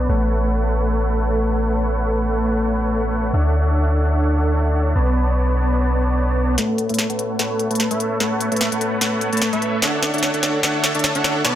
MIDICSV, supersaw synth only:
0, 0, Header, 1, 2, 480
1, 0, Start_track
1, 0, Key_signature, 3, "major"
1, 0, Tempo, 405405
1, 111, Time_signature, 4, 2, 24, 8
1, 13676, End_track
2, 0, Start_track
2, 0, Title_t, "Supersaw synth"
2, 0, Program_c, 0, 81
2, 109, Note_on_c, 0, 69, 68
2, 109, Note_on_c, 0, 73, 68
2, 110, Note_on_c, 0, 57, 74
2, 110, Note_on_c, 0, 71, 70
2, 110, Note_on_c, 0, 78, 80
2, 3924, Note_off_c, 0, 69, 0
2, 3924, Note_off_c, 0, 73, 0
2, 3925, Note_off_c, 0, 57, 0
2, 3925, Note_off_c, 0, 71, 0
2, 3925, Note_off_c, 0, 78, 0
2, 3951, Note_on_c, 0, 69, 68
2, 3951, Note_on_c, 0, 73, 72
2, 3951, Note_on_c, 0, 76, 69
2, 3952, Note_on_c, 0, 62, 74
2, 3952, Note_on_c, 0, 78, 84
2, 5845, Note_off_c, 0, 69, 0
2, 5845, Note_off_c, 0, 73, 0
2, 5845, Note_off_c, 0, 76, 0
2, 5846, Note_off_c, 0, 62, 0
2, 5846, Note_off_c, 0, 78, 0
2, 5867, Note_on_c, 0, 71, 69
2, 5867, Note_on_c, 0, 73, 70
2, 5867, Note_on_c, 0, 81, 84
2, 5868, Note_on_c, 0, 74, 67
2, 5869, Note_on_c, 0, 59, 75
2, 7763, Note_off_c, 0, 71, 0
2, 7763, Note_off_c, 0, 73, 0
2, 7763, Note_off_c, 0, 81, 0
2, 7764, Note_off_c, 0, 59, 0
2, 7764, Note_off_c, 0, 74, 0
2, 7790, Note_on_c, 0, 69, 83
2, 7790, Note_on_c, 0, 71, 88
2, 7791, Note_on_c, 0, 57, 85
2, 8131, Note_off_c, 0, 69, 0
2, 8131, Note_off_c, 0, 71, 0
2, 8132, Note_off_c, 0, 57, 0
2, 8164, Note_on_c, 0, 69, 85
2, 8164, Note_on_c, 0, 71, 82
2, 8164, Note_on_c, 0, 73, 82
2, 8164, Note_on_c, 0, 76, 95
2, 8165, Note_on_c, 0, 57, 97
2, 8372, Note_off_c, 0, 57, 0
2, 8372, Note_off_c, 0, 69, 0
2, 8372, Note_off_c, 0, 71, 0
2, 8372, Note_off_c, 0, 73, 0
2, 8372, Note_off_c, 0, 76, 0
2, 8401, Note_on_c, 0, 57, 70
2, 8401, Note_on_c, 0, 78, 78
2, 8402, Note_on_c, 0, 69, 67
2, 8402, Note_on_c, 0, 71, 67
2, 8402, Note_on_c, 0, 73, 68
2, 8724, Note_off_c, 0, 57, 0
2, 8724, Note_off_c, 0, 73, 0
2, 8724, Note_off_c, 0, 78, 0
2, 8725, Note_off_c, 0, 69, 0
2, 8725, Note_off_c, 0, 71, 0
2, 8749, Note_on_c, 0, 69, 79
2, 8749, Note_on_c, 0, 71, 84
2, 8749, Note_on_c, 0, 78, 103
2, 8750, Note_on_c, 0, 57, 94
2, 8750, Note_on_c, 0, 73, 86
2, 9091, Note_off_c, 0, 57, 0
2, 9091, Note_off_c, 0, 69, 0
2, 9091, Note_off_c, 0, 71, 0
2, 9091, Note_off_c, 0, 73, 0
2, 9091, Note_off_c, 0, 78, 0
2, 9121, Note_on_c, 0, 71, 85
2, 9121, Note_on_c, 0, 81, 104
2, 9122, Note_on_c, 0, 57, 89
2, 9122, Note_on_c, 0, 73, 81
2, 9123, Note_on_c, 0, 69, 83
2, 9330, Note_off_c, 0, 81, 0
2, 9331, Note_off_c, 0, 57, 0
2, 9331, Note_off_c, 0, 69, 0
2, 9331, Note_off_c, 0, 71, 0
2, 9331, Note_off_c, 0, 73, 0
2, 9362, Note_on_c, 0, 73, 85
2, 9363, Note_on_c, 0, 57, 98
2, 9363, Note_on_c, 0, 71, 91
2, 9364, Note_on_c, 0, 69, 88
2, 9364, Note_on_c, 0, 76, 103
2, 9685, Note_off_c, 0, 57, 0
2, 9685, Note_off_c, 0, 69, 0
2, 9685, Note_off_c, 0, 71, 0
2, 9685, Note_off_c, 0, 73, 0
2, 9685, Note_off_c, 0, 76, 0
2, 9707, Note_on_c, 0, 71, 85
2, 9708, Note_on_c, 0, 57, 92
2, 9708, Note_on_c, 0, 69, 84
2, 9708, Note_on_c, 0, 73, 86
2, 9708, Note_on_c, 0, 78, 101
2, 10050, Note_off_c, 0, 57, 0
2, 10050, Note_off_c, 0, 69, 0
2, 10050, Note_off_c, 0, 71, 0
2, 10050, Note_off_c, 0, 73, 0
2, 10050, Note_off_c, 0, 78, 0
2, 10081, Note_on_c, 0, 73, 83
2, 10082, Note_on_c, 0, 71, 84
2, 10082, Note_on_c, 0, 76, 104
2, 10083, Note_on_c, 0, 57, 92
2, 10083, Note_on_c, 0, 69, 88
2, 10291, Note_off_c, 0, 57, 0
2, 10291, Note_off_c, 0, 69, 0
2, 10291, Note_off_c, 0, 71, 0
2, 10291, Note_off_c, 0, 73, 0
2, 10291, Note_off_c, 0, 76, 0
2, 10320, Note_on_c, 0, 69, 66
2, 10321, Note_on_c, 0, 57, 75
2, 10321, Note_on_c, 0, 73, 71
2, 10322, Note_on_c, 0, 71, 69
2, 10322, Note_on_c, 0, 78, 84
2, 10644, Note_off_c, 0, 57, 0
2, 10644, Note_off_c, 0, 69, 0
2, 10644, Note_off_c, 0, 73, 0
2, 10645, Note_off_c, 0, 71, 0
2, 10645, Note_off_c, 0, 78, 0
2, 10668, Note_on_c, 0, 73, 85
2, 10668, Note_on_c, 0, 78, 106
2, 10669, Note_on_c, 0, 57, 91
2, 10669, Note_on_c, 0, 71, 80
2, 10670, Note_on_c, 0, 69, 80
2, 11010, Note_off_c, 0, 73, 0
2, 11010, Note_off_c, 0, 78, 0
2, 11011, Note_off_c, 0, 57, 0
2, 11011, Note_off_c, 0, 69, 0
2, 11011, Note_off_c, 0, 71, 0
2, 11041, Note_on_c, 0, 73, 89
2, 11042, Note_on_c, 0, 69, 88
2, 11042, Note_on_c, 0, 71, 86
2, 11042, Note_on_c, 0, 81, 103
2, 11043, Note_on_c, 0, 57, 93
2, 11250, Note_off_c, 0, 73, 0
2, 11251, Note_off_c, 0, 57, 0
2, 11251, Note_off_c, 0, 69, 0
2, 11251, Note_off_c, 0, 71, 0
2, 11251, Note_off_c, 0, 81, 0
2, 11281, Note_on_c, 0, 57, 96
2, 11282, Note_on_c, 0, 71, 91
2, 11282, Note_on_c, 0, 73, 92
2, 11283, Note_on_c, 0, 69, 88
2, 11283, Note_on_c, 0, 76, 110
2, 11604, Note_off_c, 0, 57, 0
2, 11605, Note_off_c, 0, 69, 0
2, 11605, Note_off_c, 0, 71, 0
2, 11605, Note_off_c, 0, 73, 0
2, 11605, Note_off_c, 0, 76, 0
2, 11631, Note_on_c, 0, 78, 104
2, 11632, Note_on_c, 0, 62, 96
2, 11632, Note_on_c, 0, 69, 84
2, 11632, Note_on_c, 0, 73, 86
2, 11633, Note_on_c, 0, 76, 85
2, 11972, Note_off_c, 0, 62, 0
2, 11972, Note_off_c, 0, 69, 0
2, 11972, Note_off_c, 0, 73, 0
2, 11972, Note_off_c, 0, 78, 0
2, 11973, Note_off_c, 0, 76, 0
2, 12002, Note_on_c, 0, 76, 89
2, 12003, Note_on_c, 0, 73, 91
2, 12003, Note_on_c, 0, 78, 105
2, 12004, Note_on_c, 0, 62, 94
2, 12004, Note_on_c, 0, 69, 89
2, 12211, Note_off_c, 0, 76, 0
2, 12211, Note_off_c, 0, 78, 0
2, 12212, Note_off_c, 0, 62, 0
2, 12212, Note_off_c, 0, 69, 0
2, 12212, Note_off_c, 0, 73, 0
2, 12241, Note_on_c, 0, 62, 77
2, 12242, Note_on_c, 0, 73, 66
2, 12242, Note_on_c, 0, 76, 65
2, 12242, Note_on_c, 0, 78, 81
2, 12243, Note_on_c, 0, 69, 71
2, 12564, Note_off_c, 0, 62, 0
2, 12564, Note_off_c, 0, 73, 0
2, 12564, Note_off_c, 0, 78, 0
2, 12565, Note_off_c, 0, 69, 0
2, 12565, Note_off_c, 0, 76, 0
2, 12590, Note_on_c, 0, 69, 87
2, 12590, Note_on_c, 0, 73, 86
2, 12590, Note_on_c, 0, 76, 84
2, 12591, Note_on_c, 0, 62, 93
2, 12591, Note_on_c, 0, 78, 104
2, 12931, Note_off_c, 0, 69, 0
2, 12931, Note_off_c, 0, 73, 0
2, 12931, Note_off_c, 0, 76, 0
2, 12932, Note_off_c, 0, 62, 0
2, 12932, Note_off_c, 0, 78, 0
2, 12964, Note_on_c, 0, 62, 97
2, 12964, Note_on_c, 0, 69, 85
2, 12964, Note_on_c, 0, 73, 88
2, 12964, Note_on_c, 0, 76, 88
2, 12965, Note_on_c, 0, 81, 106
2, 13172, Note_off_c, 0, 62, 0
2, 13172, Note_off_c, 0, 69, 0
2, 13172, Note_off_c, 0, 73, 0
2, 13172, Note_off_c, 0, 76, 0
2, 13172, Note_off_c, 0, 81, 0
2, 13205, Note_on_c, 0, 62, 97
2, 13205, Note_on_c, 0, 69, 91
2, 13205, Note_on_c, 0, 73, 92
2, 13205, Note_on_c, 0, 76, 90
2, 13205, Note_on_c, 0, 78, 109
2, 13526, Note_off_c, 0, 62, 0
2, 13526, Note_off_c, 0, 69, 0
2, 13526, Note_off_c, 0, 73, 0
2, 13526, Note_off_c, 0, 76, 0
2, 13526, Note_off_c, 0, 78, 0
2, 13549, Note_on_c, 0, 71, 89
2, 13549, Note_on_c, 0, 73, 92
2, 13550, Note_on_c, 0, 59, 92
2, 13550, Note_on_c, 0, 74, 91
2, 13550, Note_on_c, 0, 81, 102
2, 13676, Note_off_c, 0, 59, 0
2, 13676, Note_off_c, 0, 71, 0
2, 13676, Note_off_c, 0, 73, 0
2, 13676, Note_off_c, 0, 74, 0
2, 13676, Note_off_c, 0, 81, 0
2, 13676, End_track
0, 0, End_of_file